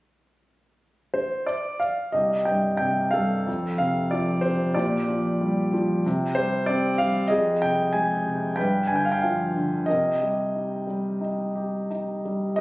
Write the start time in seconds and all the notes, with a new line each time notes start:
1.14 C5
1.47 D5
1.80 F5
2.12 C2 G4 D#5
2.45 G2 G5
2.77 C3 G5
3.11 G2 A4 F5
3.47 F2
3.78 C3 F5
4.11 F3 D5
4.41 C3 C5
4.74 A#2 G4 D5
5.08 F3
5.41 G3
5.73 F3
6.06 C3
6.35 G3 C5
6.66 C4 D5
6.98 G3 F5
7.28 F2 G#4 D#5
7.62 C3 G5
7.93 G#3 G#5
8.26 C3
8.56 G2 B4 G5
8.87 G#5
8.92 D3
8.96 G5
9.05 F5
9.12 G5
9.21 F3 F5
9.56 D3
9.86 C3 A#4 D#5
10.21 G3
10.55 D#4
10.87 G3
11.21 D#4
11.55 G4
11.90 D#4
12.25 G3
12.56 D#5